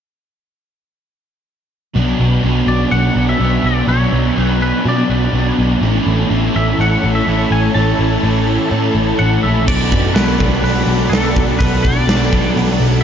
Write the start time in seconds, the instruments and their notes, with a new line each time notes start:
1.94 picked electric bass B1, overdriven electric guitar B2 F#3 B3 D4
2.19 picked electric bass B1, distorted electric guitar F#3 B3
2.43 picked electric bass B1, overdriven electric guitar B2 F#3 B3 D4
2.67 picked electric bass B1, overdriven electric guitar F#3 B3 D4, clean electric guitar D5
2.90 picked electric bass B1, overdriven electric guitar B2 F#3 B3 D4, clean electric guitar F#5
3.15 picked electric bass B1, distorted electric guitar F#3 B3
3.29 clean electric guitar E5
3.39 picked electric bass B1, overdriven electric guitar B2 F#3 B3 D4
3.63 picked electric bass B1, distorted electric guitar F#3 B3, clean electric guitar D5
3.87 picked electric bass B1, overdriven electric guitar B2 F#3 B3 D4, clean electric guitar C#5
4.11 picked electric bass B1, distorted electric guitar F#3 B3
4.36 picked electric bass B1, overdriven electric guitar B2 F#3 B3 D4
4.43 clean electric guitar B4
4.60 overdriven electric guitar F#3 B3 D4, clean electric guitar B4
4.85 overdriven electric guitar B2 F#3 B3 D4, picked electric bass B2, clean electric guitar D5
5.08 picked electric bass B1, distorted electric guitar F#3 B3
5.33 picked electric bass B1, overdriven electric guitar B2 F#3 B3 D4
5.57 picked electric bass B1, distorted electric guitar F#3 B3
5.81 picked electric bass A1, overdriven electric guitar A2 E3 A3 C#4 E4, string machine E4 A4 C#5 A5
6.04 picked electric bass A1, distorted electric guitar E3 A3
6.28 picked electric bass A1, distorted electric guitar A2, overdriven electric guitar E3 A3 C#4 E4
6.54 picked electric bass A1, overdriven electric guitar A3 C#4 E4, clean electric guitar E5
6.79 picked electric bass A1, overdriven electric guitar A2 E3 A3 C#4 E4, clean electric guitar F#5
7.02 picked electric bass A1, distorted electric guitar E3 A3
7.15 clean electric guitar E5
7.25 picked electric bass A1, distorted electric guitar A2, overdriven electric guitar E3 A3 C#4 E4
7.50 picked electric bass A1, distorted electric guitar E3 A3, clean electric guitar G#5
7.74 picked electric bass A1, overdriven electric guitar A2 E3 A3 C#4 E4, clean electric guitar A5
7.98 picked electric bass A1, distorted electric guitar E3 A3
8.22 picked electric bass A1, distorted electric guitar A2, overdriven electric guitar E3 A3 C#4 E4
8.47 overdriven electric guitar A3 C#4 E4
8.70 overdriven electric guitar A2 E3 A3 C#4 E4, picked electric bass A2
8.95 picked electric bass A1, distorted electric guitar E3 A3
9.19 picked electric bass A1, distorted electric guitar A2, overdriven electric guitar E3 A3 C#4 E4, clean electric guitar F#5
9.43 picked electric bass A#1, distorted electric guitar E3 A3, clean electric guitar E5
9.66 picked electric bass B1, overdriven electric guitar B2 F#3 B3 D4, string machine A4 D5 F#5 B5, clean electric guitar D5, kick, crash
9.92 picked electric bass F#2, kick
10.14 picked electric bass B1, clean electric guitar B4, snare, open hi-hat
10.39 picked electric bass B1, overdriven electric guitar B2 F#3 B3 D4, kick
10.63 picked electric bass B1, clean electric guitar B4, open hi-hat
10.86 picked electric bass B1
11.10 picked electric bass B1, clean electric guitar A4, snare, open hi-hat
11.36 picked electric bass B1, kick
11.58 picked electric bass B1, overdriven electric guitar B2 F#3 B3 D4, clean electric guitar B4, kick, open hi-hat
11.83 picked electric bass B1, clean electric guitar D5, kick
12.08 picked electric bass B1, snare, open hi-hat
12.31 picked electric bass B1, overdriven electric guitar B2 F#3 B3 D4, kick
12.56 picked electric bass B1, open hi-hat
12.80 picked electric bass B1